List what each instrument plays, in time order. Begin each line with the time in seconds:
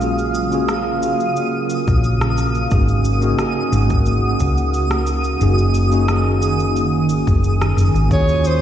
Already playing: fingered electric bass A#1, ambient pad C#3 F#3 F5, tine electric piano F4 F#4 G#4, synth texture D#6
0.00 tine electric piano A#3 C#4 F4 F#4 G#4, ambient pad A#3, shaker
0.18 shaker
0.34 shaker
0.50 tine electric piano A#3 C#4 F4 F#4, shaker
0.54 tine electric piano G#4
0.69 cross-stick, shaker
0.98 tine electric piano A#3 C#4 F4
1.03 tine electric piano F#4 G#4, shaker
1.20 shaker
1.36 shaker
1.70 shaker
1.88 fingered electric bass A#1, kick, shaker
2.04 shaker
2.21 cross-stick, shaker
2.38 shaker
2.55 shaker
2.70 fingered electric bass G#1, tine electric piano A#3 C#4 D#4 F#4 G#4, ambient pad F#4, kick, shaker
2.88 shaker
3.05 shaker
3.20 tine electric piano A#3 C#4 D#4 F#4, shaker
3.24 tine electric piano G#4
3.39 cross-stick, shaker
3.69 fingered electric bass G#1, tine electric piano A#3 C#4 D#4, shaker
3.75 tine electric piano F#4 G#4
3.90 kick, shaker
4.06 shaker
4.40 fingered electric bass C#2, kick, shaker
4.57 shaker
4.74 shaker
4.91 cross-stick, shaker
5.07 shaker
5.24 shaker
5.39 fingered electric bass F#1, ambient pad D#3 G#4, tine electric piano A#3 C#4 D#4 F#4, shaker
5.43 tine electric piano G#4
5.58 shaker
5.74 shaker
5.90 tine electric piano A#3 C#4 D#4 F#4, shaker
5.94 tine electric piano G#4
6.08 cross-stick, shaker
6.39 tine electric piano A#3 C#4 D#4, shaker
6.44 tine electric piano F#4 G#4
6.60 shaker
6.76 shaker
7.09 fingered electric bass G#1, shaker
7.27 fingered electric bass F#1, kick, shaker
7.44 shaker
7.62 cross-stick, shaker
7.77 fingered electric bass F#1, shaker
7.94 fingered electric bass G#1, shaker
8.09 fingered electric bass D#2, ambient pad C#3 F#3 G#3 F5, tine electric piano A#3 C#4 F4 F#4, soprano saxophone C#5, kick, shaker
8.13 tine electric piano G#4
8.29 shaker
8.45 soprano saxophone C5, shaker